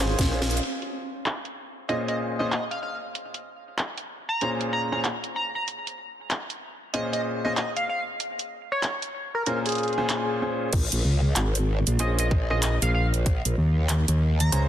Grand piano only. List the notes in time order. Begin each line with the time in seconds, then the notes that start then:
Already playing: C#4 F4 G#4 C5
0.31 C#4 F4 G#4 C5
1.89 A#2 C#4 F4 G#4 C5
2.40 A#2 C#4 F4 G#4 C5
4.42 A#2 C#4 F4 G#4 C5
4.92 A#2 C#4 F4 G#4 C5
6.94 A#2 C#4 F4 G#4 C5
7.45 A#2 C#4 F4 G#4 C5
9.47 A#2 C#4 F4 G#4 C5
9.98 A#2 C#4 F4 G#4 C5
10.42 A#2 C#4 F4 G#4 C5
11.99 C#4 F4 G#4 C5
12.50 C#4 F4 G#4 C5
14.52 C#4 F4 G#4 C5